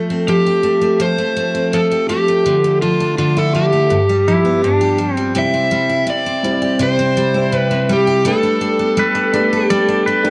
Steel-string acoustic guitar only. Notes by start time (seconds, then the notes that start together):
Already playing: F3 A3 A4
0.10 C4
0.28 F3
0.46 G4
0.63 A3
0.81 A3
1.00 F3
1.18 A3
1.37 A3
1.55 C4
1.73 F3
1.91 G4
2.09 A3
2.28 A3
2.46 D3
2.64 A3
2.82 F3
3.00 D4
3.18 D3
3.37 E4
3.55 F3
3.73 A3
3.90 G2
4.09 G3
4.28 F3
4.45 B3
4.64 G2
4.81 G4
4.98 F3
5.17 G3
5.35 C3 G4
5.54 C4
5.71 G3
5.89 E4
6.07 C3
6.26 C4
6.44 G3
6.62 G4
6.79 C3 G4
6.99 C4
7.17 G3
7.34 E4
7.52 C3
7.71 C4
7.89 G3
8.07 G4
8.25 G3 A4
8.43 D4
8.61 D4
8.79 B3
8.97 G3
9.15 D4
9.34 D4
9.53 A4
9.70 G3 A4
9.89 D4
10.08 D4
10.25 B3